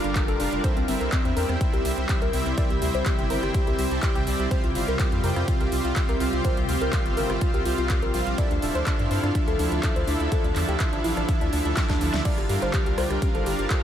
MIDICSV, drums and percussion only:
0, 0, Header, 1, 2, 480
1, 0, Start_track
1, 0, Tempo, 483871
1, 635, Time_signature, 4, 2, 24, 8
1, 13719, End_track
2, 0, Start_track
2, 0, Title_t, "Drums"
2, 41, Note_on_c, 9, 42, 40
2, 141, Note_off_c, 9, 42, 0
2, 152, Note_on_c, 9, 39, 127
2, 155, Note_on_c, 9, 36, 121
2, 155, Note_on_c, 9, 42, 93
2, 251, Note_off_c, 9, 39, 0
2, 254, Note_off_c, 9, 36, 0
2, 254, Note_off_c, 9, 42, 0
2, 281, Note_on_c, 9, 42, 40
2, 380, Note_off_c, 9, 42, 0
2, 395, Note_on_c, 9, 46, 102
2, 494, Note_off_c, 9, 46, 0
2, 521, Note_on_c, 9, 42, 39
2, 620, Note_off_c, 9, 42, 0
2, 635, Note_on_c, 9, 36, 127
2, 635, Note_on_c, 9, 42, 94
2, 734, Note_off_c, 9, 36, 0
2, 734, Note_off_c, 9, 42, 0
2, 761, Note_on_c, 9, 42, 38
2, 861, Note_off_c, 9, 42, 0
2, 875, Note_on_c, 9, 46, 113
2, 974, Note_off_c, 9, 46, 0
2, 1002, Note_on_c, 9, 42, 39
2, 1101, Note_off_c, 9, 42, 0
2, 1112, Note_on_c, 9, 39, 124
2, 1115, Note_on_c, 9, 36, 127
2, 1115, Note_on_c, 9, 42, 92
2, 1212, Note_off_c, 9, 39, 0
2, 1214, Note_off_c, 9, 42, 0
2, 1215, Note_off_c, 9, 36, 0
2, 1242, Note_on_c, 9, 42, 39
2, 1341, Note_off_c, 9, 42, 0
2, 1356, Note_on_c, 9, 46, 97
2, 1455, Note_off_c, 9, 46, 0
2, 1482, Note_on_c, 9, 37, 59
2, 1482, Note_on_c, 9, 42, 39
2, 1581, Note_off_c, 9, 37, 0
2, 1581, Note_off_c, 9, 42, 0
2, 1595, Note_on_c, 9, 42, 91
2, 1596, Note_on_c, 9, 36, 126
2, 1694, Note_off_c, 9, 42, 0
2, 1695, Note_off_c, 9, 36, 0
2, 1721, Note_on_c, 9, 42, 38
2, 1821, Note_off_c, 9, 42, 0
2, 1835, Note_on_c, 9, 46, 114
2, 1934, Note_off_c, 9, 46, 0
2, 2072, Note_on_c, 9, 39, 124
2, 2075, Note_on_c, 9, 42, 93
2, 2076, Note_on_c, 9, 36, 126
2, 2172, Note_off_c, 9, 39, 0
2, 2174, Note_off_c, 9, 42, 0
2, 2175, Note_off_c, 9, 36, 0
2, 2201, Note_on_c, 9, 42, 39
2, 2301, Note_off_c, 9, 42, 0
2, 2315, Note_on_c, 9, 46, 98
2, 2414, Note_off_c, 9, 46, 0
2, 2442, Note_on_c, 9, 42, 37
2, 2541, Note_off_c, 9, 42, 0
2, 2555, Note_on_c, 9, 42, 91
2, 2556, Note_on_c, 9, 36, 125
2, 2655, Note_off_c, 9, 36, 0
2, 2655, Note_off_c, 9, 42, 0
2, 2681, Note_on_c, 9, 42, 38
2, 2781, Note_off_c, 9, 42, 0
2, 2795, Note_on_c, 9, 46, 108
2, 2895, Note_off_c, 9, 46, 0
2, 2921, Note_on_c, 9, 42, 40
2, 3021, Note_off_c, 9, 42, 0
2, 3033, Note_on_c, 9, 39, 118
2, 3035, Note_on_c, 9, 42, 89
2, 3036, Note_on_c, 9, 36, 127
2, 3132, Note_off_c, 9, 39, 0
2, 3134, Note_off_c, 9, 42, 0
2, 3135, Note_off_c, 9, 36, 0
2, 3161, Note_on_c, 9, 42, 37
2, 3261, Note_off_c, 9, 42, 0
2, 3275, Note_on_c, 9, 46, 95
2, 3375, Note_off_c, 9, 46, 0
2, 3402, Note_on_c, 9, 37, 62
2, 3402, Note_on_c, 9, 42, 39
2, 3502, Note_off_c, 9, 37, 0
2, 3502, Note_off_c, 9, 42, 0
2, 3516, Note_on_c, 9, 36, 124
2, 3516, Note_on_c, 9, 42, 88
2, 3615, Note_off_c, 9, 36, 0
2, 3615, Note_off_c, 9, 42, 0
2, 3643, Note_on_c, 9, 42, 37
2, 3742, Note_off_c, 9, 42, 0
2, 3756, Note_on_c, 9, 46, 107
2, 3855, Note_off_c, 9, 46, 0
2, 3882, Note_on_c, 9, 42, 38
2, 3981, Note_off_c, 9, 42, 0
2, 3993, Note_on_c, 9, 39, 114
2, 3996, Note_on_c, 9, 36, 124
2, 3996, Note_on_c, 9, 42, 89
2, 4092, Note_off_c, 9, 39, 0
2, 4095, Note_off_c, 9, 36, 0
2, 4095, Note_off_c, 9, 42, 0
2, 4122, Note_on_c, 9, 42, 37
2, 4221, Note_off_c, 9, 42, 0
2, 4235, Note_on_c, 9, 46, 100
2, 4335, Note_off_c, 9, 46, 0
2, 4361, Note_on_c, 9, 42, 37
2, 4461, Note_off_c, 9, 42, 0
2, 4475, Note_on_c, 9, 42, 89
2, 4476, Note_on_c, 9, 36, 120
2, 4574, Note_off_c, 9, 42, 0
2, 4575, Note_off_c, 9, 36, 0
2, 4601, Note_on_c, 9, 42, 38
2, 4700, Note_off_c, 9, 42, 0
2, 4715, Note_on_c, 9, 46, 102
2, 4814, Note_off_c, 9, 46, 0
2, 4841, Note_on_c, 9, 42, 38
2, 4941, Note_off_c, 9, 42, 0
2, 4952, Note_on_c, 9, 39, 114
2, 4955, Note_on_c, 9, 42, 91
2, 4956, Note_on_c, 9, 36, 125
2, 5052, Note_off_c, 9, 39, 0
2, 5054, Note_off_c, 9, 42, 0
2, 5055, Note_off_c, 9, 36, 0
2, 5080, Note_on_c, 9, 42, 38
2, 5180, Note_off_c, 9, 42, 0
2, 5195, Note_on_c, 9, 46, 92
2, 5294, Note_off_c, 9, 46, 0
2, 5321, Note_on_c, 9, 37, 65
2, 5321, Note_on_c, 9, 42, 38
2, 5420, Note_off_c, 9, 37, 0
2, 5420, Note_off_c, 9, 42, 0
2, 5435, Note_on_c, 9, 36, 121
2, 5435, Note_on_c, 9, 42, 88
2, 5534, Note_off_c, 9, 42, 0
2, 5535, Note_off_c, 9, 36, 0
2, 5561, Note_on_c, 9, 42, 39
2, 5660, Note_off_c, 9, 42, 0
2, 5674, Note_on_c, 9, 46, 106
2, 5774, Note_off_c, 9, 46, 0
2, 5801, Note_on_c, 9, 42, 39
2, 5900, Note_off_c, 9, 42, 0
2, 5912, Note_on_c, 9, 39, 117
2, 5914, Note_on_c, 9, 42, 91
2, 5915, Note_on_c, 9, 36, 121
2, 6011, Note_off_c, 9, 39, 0
2, 6014, Note_off_c, 9, 36, 0
2, 6014, Note_off_c, 9, 42, 0
2, 6040, Note_on_c, 9, 42, 39
2, 6140, Note_off_c, 9, 42, 0
2, 6154, Note_on_c, 9, 46, 94
2, 6254, Note_off_c, 9, 46, 0
2, 6280, Note_on_c, 9, 42, 38
2, 6379, Note_off_c, 9, 42, 0
2, 6393, Note_on_c, 9, 42, 92
2, 6395, Note_on_c, 9, 36, 115
2, 6493, Note_off_c, 9, 42, 0
2, 6494, Note_off_c, 9, 36, 0
2, 6520, Note_on_c, 9, 42, 40
2, 6619, Note_off_c, 9, 42, 0
2, 6634, Note_on_c, 9, 46, 102
2, 6733, Note_off_c, 9, 46, 0
2, 6760, Note_on_c, 9, 42, 40
2, 6859, Note_off_c, 9, 42, 0
2, 6871, Note_on_c, 9, 39, 115
2, 6874, Note_on_c, 9, 42, 93
2, 6875, Note_on_c, 9, 36, 120
2, 6970, Note_off_c, 9, 39, 0
2, 6973, Note_off_c, 9, 42, 0
2, 6974, Note_off_c, 9, 36, 0
2, 7000, Note_on_c, 9, 42, 39
2, 7099, Note_off_c, 9, 42, 0
2, 7114, Note_on_c, 9, 46, 86
2, 7213, Note_off_c, 9, 46, 0
2, 7240, Note_on_c, 9, 37, 66
2, 7240, Note_on_c, 9, 42, 39
2, 7339, Note_off_c, 9, 37, 0
2, 7339, Note_off_c, 9, 42, 0
2, 7354, Note_on_c, 9, 42, 92
2, 7355, Note_on_c, 9, 36, 113
2, 7453, Note_off_c, 9, 42, 0
2, 7454, Note_off_c, 9, 36, 0
2, 7480, Note_on_c, 9, 42, 40
2, 7580, Note_off_c, 9, 42, 0
2, 7594, Note_on_c, 9, 46, 102
2, 7693, Note_off_c, 9, 46, 0
2, 7720, Note_on_c, 9, 42, 40
2, 7819, Note_off_c, 9, 42, 0
2, 7831, Note_on_c, 9, 39, 117
2, 7834, Note_on_c, 9, 42, 95
2, 7835, Note_on_c, 9, 36, 115
2, 7930, Note_off_c, 9, 39, 0
2, 7933, Note_off_c, 9, 42, 0
2, 7934, Note_off_c, 9, 36, 0
2, 7960, Note_on_c, 9, 42, 39
2, 8059, Note_off_c, 9, 42, 0
2, 8074, Note_on_c, 9, 46, 93
2, 8173, Note_off_c, 9, 46, 0
2, 8200, Note_on_c, 9, 42, 39
2, 8299, Note_off_c, 9, 42, 0
2, 8314, Note_on_c, 9, 42, 97
2, 8315, Note_on_c, 9, 36, 110
2, 8413, Note_off_c, 9, 42, 0
2, 8414, Note_off_c, 9, 36, 0
2, 8440, Note_on_c, 9, 42, 42
2, 8540, Note_off_c, 9, 42, 0
2, 8555, Note_on_c, 9, 46, 104
2, 8654, Note_off_c, 9, 46, 0
2, 8681, Note_on_c, 9, 42, 42
2, 8780, Note_off_c, 9, 42, 0
2, 8792, Note_on_c, 9, 39, 116
2, 8795, Note_on_c, 9, 36, 118
2, 8795, Note_on_c, 9, 42, 97
2, 8891, Note_off_c, 9, 39, 0
2, 8894, Note_off_c, 9, 42, 0
2, 8895, Note_off_c, 9, 36, 0
2, 8921, Note_on_c, 9, 42, 42
2, 9021, Note_off_c, 9, 42, 0
2, 9035, Note_on_c, 9, 46, 89
2, 9135, Note_off_c, 9, 46, 0
2, 9161, Note_on_c, 9, 37, 61
2, 9161, Note_on_c, 9, 42, 41
2, 9261, Note_off_c, 9, 37, 0
2, 9261, Note_off_c, 9, 42, 0
2, 9275, Note_on_c, 9, 42, 98
2, 9276, Note_on_c, 9, 36, 116
2, 9375, Note_off_c, 9, 36, 0
2, 9375, Note_off_c, 9, 42, 0
2, 9401, Note_on_c, 9, 42, 41
2, 9500, Note_off_c, 9, 42, 0
2, 9515, Note_on_c, 9, 46, 103
2, 9615, Note_off_c, 9, 46, 0
2, 9641, Note_on_c, 9, 42, 41
2, 9740, Note_off_c, 9, 42, 0
2, 9752, Note_on_c, 9, 39, 120
2, 9755, Note_on_c, 9, 42, 98
2, 9756, Note_on_c, 9, 36, 110
2, 9851, Note_off_c, 9, 39, 0
2, 9854, Note_off_c, 9, 42, 0
2, 9855, Note_off_c, 9, 36, 0
2, 9882, Note_on_c, 9, 42, 40
2, 9981, Note_off_c, 9, 42, 0
2, 9995, Note_on_c, 9, 46, 91
2, 10094, Note_off_c, 9, 46, 0
2, 10121, Note_on_c, 9, 42, 41
2, 10220, Note_off_c, 9, 42, 0
2, 10235, Note_on_c, 9, 42, 102
2, 10236, Note_on_c, 9, 36, 116
2, 10334, Note_off_c, 9, 42, 0
2, 10335, Note_off_c, 9, 36, 0
2, 10361, Note_on_c, 9, 42, 42
2, 10460, Note_off_c, 9, 42, 0
2, 10472, Note_on_c, 9, 39, 61
2, 10475, Note_on_c, 9, 46, 103
2, 10571, Note_off_c, 9, 39, 0
2, 10574, Note_off_c, 9, 46, 0
2, 10601, Note_on_c, 9, 42, 43
2, 10700, Note_off_c, 9, 42, 0
2, 10712, Note_on_c, 9, 39, 120
2, 10714, Note_on_c, 9, 42, 97
2, 10716, Note_on_c, 9, 36, 123
2, 10811, Note_off_c, 9, 39, 0
2, 10814, Note_off_c, 9, 42, 0
2, 10815, Note_off_c, 9, 36, 0
2, 10841, Note_on_c, 9, 42, 42
2, 10940, Note_off_c, 9, 42, 0
2, 10955, Note_on_c, 9, 46, 86
2, 11054, Note_off_c, 9, 46, 0
2, 11081, Note_on_c, 9, 37, 61
2, 11081, Note_on_c, 9, 42, 42
2, 11180, Note_off_c, 9, 37, 0
2, 11180, Note_off_c, 9, 42, 0
2, 11195, Note_on_c, 9, 42, 94
2, 11196, Note_on_c, 9, 36, 117
2, 11294, Note_off_c, 9, 42, 0
2, 11295, Note_off_c, 9, 36, 0
2, 11321, Note_on_c, 9, 42, 42
2, 11420, Note_off_c, 9, 42, 0
2, 11435, Note_on_c, 9, 46, 103
2, 11534, Note_off_c, 9, 46, 0
2, 11561, Note_on_c, 9, 42, 42
2, 11660, Note_off_c, 9, 42, 0
2, 11672, Note_on_c, 9, 39, 123
2, 11675, Note_on_c, 9, 38, 60
2, 11675, Note_on_c, 9, 42, 98
2, 11676, Note_on_c, 9, 36, 115
2, 11771, Note_off_c, 9, 39, 0
2, 11774, Note_off_c, 9, 38, 0
2, 11774, Note_off_c, 9, 42, 0
2, 11775, Note_off_c, 9, 36, 0
2, 11800, Note_on_c, 9, 38, 62
2, 11800, Note_on_c, 9, 42, 41
2, 11802, Note_on_c, 9, 36, 61
2, 11900, Note_off_c, 9, 38, 0
2, 11900, Note_off_c, 9, 42, 0
2, 11901, Note_off_c, 9, 36, 0
2, 11914, Note_on_c, 9, 46, 93
2, 12013, Note_off_c, 9, 46, 0
2, 12040, Note_on_c, 9, 38, 81
2, 12040, Note_on_c, 9, 42, 42
2, 12139, Note_off_c, 9, 38, 0
2, 12139, Note_off_c, 9, 42, 0
2, 12154, Note_on_c, 9, 42, 100
2, 12154, Note_on_c, 9, 49, 78
2, 12155, Note_on_c, 9, 36, 119
2, 12253, Note_off_c, 9, 42, 0
2, 12253, Note_off_c, 9, 49, 0
2, 12255, Note_off_c, 9, 36, 0
2, 12280, Note_on_c, 9, 42, 42
2, 12281, Note_on_c, 9, 37, 42
2, 12379, Note_off_c, 9, 42, 0
2, 12380, Note_off_c, 9, 37, 0
2, 12395, Note_on_c, 9, 46, 105
2, 12494, Note_off_c, 9, 46, 0
2, 12521, Note_on_c, 9, 42, 42
2, 12620, Note_off_c, 9, 42, 0
2, 12632, Note_on_c, 9, 39, 126
2, 12634, Note_on_c, 9, 42, 100
2, 12635, Note_on_c, 9, 36, 123
2, 12731, Note_off_c, 9, 39, 0
2, 12733, Note_off_c, 9, 42, 0
2, 12735, Note_off_c, 9, 36, 0
2, 12760, Note_on_c, 9, 42, 41
2, 12859, Note_off_c, 9, 42, 0
2, 12874, Note_on_c, 9, 37, 86
2, 12874, Note_on_c, 9, 46, 92
2, 12973, Note_off_c, 9, 37, 0
2, 12974, Note_off_c, 9, 46, 0
2, 13000, Note_on_c, 9, 37, 59
2, 13000, Note_on_c, 9, 42, 42
2, 13099, Note_off_c, 9, 37, 0
2, 13099, Note_off_c, 9, 42, 0
2, 13114, Note_on_c, 9, 42, 94
2, 13115, Note_on_c, 9, 36, 120
2, 13115, Note_on_c, 9, 63, 70
2, 13213, Note_off_c, 9, 42, 0
2, 13214, Note_off_c, 9, 36, 0
2, 13214, Note_off_c, 9, 63, 0
2, 13240, Note_on_c, 9, 42, 43
2, 13340, Note_off_c, 9, 42, 0
2, 13355, Note_on_c, 9, 46, 103
2, 13454, Note_off_c, 9, 46, 0
2, 13481, Note_on_c, 9, 42, 42
2, 13580, Note_off_c, 9, 42, 0
2, 13592, Note_on_c, 9, 39, 126
2, 13595, Note_on_c, 9, 36, 117
2, 13595, Note_on_c, 9, 37, 42
2, 13595, Note_on_c, 9, 42, 97
2, 13691, Note_off_c, 9, 39, 0
2, 13694, Note_off_c, 9, 36, 0
2, 13694, Note_off_c, 9, 37, 0
2, 13694, Note_off_c, 9, 42, 0
2, 13719, End_track
0, 0, End_of_file